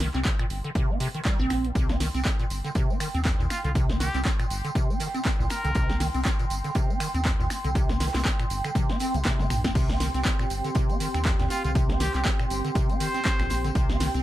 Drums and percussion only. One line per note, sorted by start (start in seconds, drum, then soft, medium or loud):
0.00 snare medium
0.00 closed hi-hat medium
0.00 open hi-hat loud
0.14 clap soft
0.14 closed hi-hat soft
0.25 kick loud
0.25 snare loud
0.25 clap loud
0.25 closed hi-hat medium
0.39 finger snap medium
0.39 closed hi-hat soft
0.50 closed hi-hat medium
0.50 open hi-hat loud
0.64 closed hi-hat soft
0.75 kick loud
0.75 closed hi-hat medium
1.00 snare soft
1.00 closed hi-hat medium
1.00 open hi-hat loud
1.14 closed hi-hat soft
1.25 kick loud
1.25 snare loud
1.25 clap loud
1.25 closed hi-hat medium
1.39 snare soft
1.50 finger snap medium
1.50 snare soft
1.50 closed hi-hat medium
1.50 open hi-hat loud
1.65 closed hi-hat soft
1.75 kick loud
1.75 closed hi-hat medium
1.75 tambourine soft
1.89 snare medium
1.89 tambourine soft
2.00 snare medium
2.00 open hi-hat loud
2.00 open hi-hat medium
2.00 tambourine medium
2.15 closed hi-hat soft
2.15 tambourine soft
2.25 kick loud
2.25 snare loud
2.25 clap loud
2.25 closed hi-hat medium
2.25 tambourine soft
2.40 closed hi-hat soft
2.40 tambourine soft
2.50 closed hi-hat medium
2.50 open hi-hat loud
2.50 tambourine medium
2.65 snare soft
2.65 closed hi-hat soft
2.65 tambourine soft
2.75 kick loud
2.75 closed hi-hat medium
2.75 tambourine soft
2.90 tambourine soft
3.00 finger snap medium
3.00 closed hi-hat medium
3.00 open hi-hat loud
3.00 tambourine medium
3.15 closed hi-hat soft
3.15 tambourine soft
3.25 kick loud
3.25 snare loud
3.25 clap loud
3.25 closed hi-hat medium
3.25 tambourine soft
3.39 snare soft
3.39 tambourine soft
3.50 finger snap medium
3.50 snare soft
3.50 closed hi-hat medium
3.50 open hi-hat loud
3.50 tambourine medium
3.65 closed hi-hat soft
3.65 tambourine soft
3.75 kick loud
3.75 closed hi-hat medium
3.75 tambourine soft
3.90 snare medium
3.90 tambourine soft
4.00 snare medium
4.00 closed hi-hat medium
4.00 open hi-hat medium
4.00 tambourine medium
4.14 clap soft
4.14 closed hi-hat soft
4.14 tambourine soft
4.25 kick loud
4.25 snare loud
4.25 clap loud
4.25 closed hi-hat medium
4.25 tambourine soft
4.40 finger snap medium
4.40 closed hi-hat soft
4.40 tambourine soft
4.50 closed hi-hat medium
4.50 open hi-hat loud
4.50 tambourine medium
4.65 closed hi-hat medium
4.65 tambourine soft
4.75 kick loud
4.75 closed hi-hat medium
4.75 tambourine soft
4.90 tambourine soft
5.00 snare medium
5.00 closed hi-hat medium
5.00 open hi-hat loud
5.00 tambourine medium
5.14 closed hi-hat soft
5.14 tambourine soft
5.25 kick loud
5.25 snare loud
5.25 clap loud
5.25 closed hi-hat medium
5.25 tambourine soft
5.40 snare soft
5.40 tambourine soft
5.50 finger snap medium
5.50 snare soft
5.50 closed hi-hat medium
5.50 open hi-hat loud
5.50 tambourine medium
5.65 closed hi-hat medium
5.65 tambourine soft
5.75 kick loud
5.75 closed hi-hat medium
5.75 tambourine soft
5.90 snare medium
5.90 tambourine soft
6.00 snare medium
6.00 open hi-hat loud
6.00 open hi-hat medium
6.00 tambourine medium
6.15 closed hi-hat medium
6.15 tambourine soft
6.25 kick loud
6.25 snare loud
6.25 clap loud
6.25 closed hi-hat medium
6.25 tambourine soft
6.39 closed hi-hat soft
6.39 tambourine soft
6.50 closed hi-hat medium
6.50 open hi-hat loud
6.50 tambourine medium
6.64 snare soft
6.64 closed hi-hat medium
6.64 tambourine soft
6.75 kick loud
6.75 closed hi-hat medium
6.75 tambourine soft
6.90 tambourine soft
7.00 finger snap medium
7.00 closed hi-hat medium
7.00 open hi-hat loud
7.00 tambourine medium
7.14 closed hi-hat medium
7.14 tambourine soft
7.25 kick loud
7.25 snare loud
7.25 clap loud
7.25 closed hi-hat medium
7.25 tambourine soft
7.40 snare soft
7.40 tambourine soft
7.50 finger snap medium
7.50 snare soft
7.50 closed hi-hat medium
7.50 open hi-hat loud
7.50 tambourine medium
7.64 closed hi-hat medium
7.64 tambourine soft
7.75 kick loud
7.75 closed hi-hat medium
7.75 tambourine soft
7.89 snare medium
7.89 tambourine soft
8.00 snare medium
8.00 closed hi-hat medium
8.00 open hi-hat loud
8.00 tambourine medium
8.08 snare medium
8.08 closed hi-hat medium
8.14 snare medium
8.14 clap soft
8.14 closed hi-hat medium
8.14 tambourine soft
8.19 snare medium
8.19 closed hi-hat medium
8.25 kick loud
8.25 snare loud
8.25 clap loud
8.25 closed hi-hat medium
8.25 tambourine soft
8.40 finger snap medium
8.40 closed hi-hat soft
8.40 tambourine soft
8.50 closed hi-hat medium
8.50 open hi-hat loud
8.50 tambourine medium
8.64 finger snap medium
8.64 closed hi-hat medium
8.64 tambourine soft
8.75 kick loud
8.75 closed hi-hat medium
8.75 high tom medium
8.75 tambourine soft
8.89 snare medium
8.89 tambourine soft
9.00 snare medium
9.00 closed hi-hat medium
9.00 open hi-hat loud
9.00 tambourine medium
9.14 closed hi-hat soft
9.14 closed hi-hat medium
9.14 mid tom medium
9.14 tambourine soft
9.25 kick loud
9.25 snare loud
9.25 snare medium
9.25 clap loud
9.25 closed hi-hat medium
9.25 tambourine soft
9.39 snare soft
9.39 mid tom medium
9.39 tambourine soft
9.50 finger snap medium
9.50 snare soft
9.50 closed hi-hat medium
9.50 mid tom loud
9.50 open hi-hat loud
9.50 tambourine medium
9.64 kick medium
9.64 snare medium
9.64 closed hi-hat medium
9.64 tambourine soft
9.75 kick loud
9.75 closed hi-hat loud
9.75 closed hi-hat medium
9.75 crash loud
9.75 tambourine soft
9.89 snare medium
9.89 tambourine soft
10.00 snare medium
10.00 open hi-hat loud
10.00 open hi-hat medium
10.00 tambourine medium
10.14 closed hi-hat medium
10.14 tambourine soft
10.25 kick loud
10.25 snare loud
10.25 clap loud
10.25 closed hi-hat medium
10.25 tambourine soft
10.39 finger snap medium
10.39 tambourine soft
10.50 closed hi-hat medium
10.50 open hi-hat loud
10.50 tambourine medium
10.64 snare soft
10.64 closed hi-hat medium
10.64 tambourine soft
10.75 kick loud
10.75 closed hi-hat medium
10.75 tambourine soft
10.89 closed hi-hat soft
10.89 tambourine soft
11.00 closed hi-hat medium
11.00 open hi-hat loud
11.00 tambourine medium
11.14 finger snap medium
11.14 closed hi-hat medium
11.14 tambourine soft
11.25 kick loud
11.25 snare loud
11.25 clap loud
11.25 closed hi-hat medium
11.25 tambourine soft
11.39 snare medium
11.39 snare soft
11.39 closed hi-hat soft
11.39 tambourine soft
11.50 snare soft
11.50 closed hi-hat medium
11.50 open hi-hat loud
11.50 tambourine medium
11.65 closed hi-hat medium
11.65 tambourine soft
11.75 kick loud
11.75 closed hi-hat medium
11.75 tambourine soft
11.89 snare medium
11.89 tambourine soft
12.00 snare medium
12.00 closed hi-hat medium
12.00 open hi-hat loud
12.00 tambourine medium
12.14 clap soft
12.14 closed hi-hat medium
12.14 tambourine soft
12.25 kick loud
12.25 snare loud
12.25 clap loud
12.25 closed hi-hat medium
12.25 tambourine soft
12.40 finger snap medium
12.40 tambourine soft
12.50 closed hi-hat medium
12.50 open hi-hat loud
12.50 tambourine medium
12.65 closed hi-hat medium
12.65 tambourine soft
12.75 kick loud
12.75 closed hi-hat medium
12.75 closed hi-hat loud
12.75 tambourine soft
12.90 closed hi-hat soft
12.90 tambourine soft
13.00 snare medium
13.00 closed hi-hat medium
13.00 open hi-hat loud
13.00 tambourine medium
13.14 closed hi-hat soft
13.14 closed hi-hat medium
13.14 tambourine soft
13.25 finger snap medium
13.25 kick loud
13.25 snare loud
13.25 clap loud
13.25 closed hi-hat medium
13.25 tambourine soft
13.39 finger snap medium
13.39 snare soft
13.39 closed hi-hat soft
13.39 tambourine soft
13.50 snare soft
13.50 closed hi-hat medium
13.50 open hi-hat loud
13.50 tambourine medium
13.65 closed hi-hat medium
13.65 tambourine soft
13.75 kick loud
13.75 closed hi-hat medium
13.75 tambourine soft
13.90 snare medium
13.90 tambourine soft
14.00 snare medium
14.00 open hi-hat medium
14.00 open hi-hat loud
14.00 tambourine medium
14.15 closed hi-hat medium
14.15 tambourine soft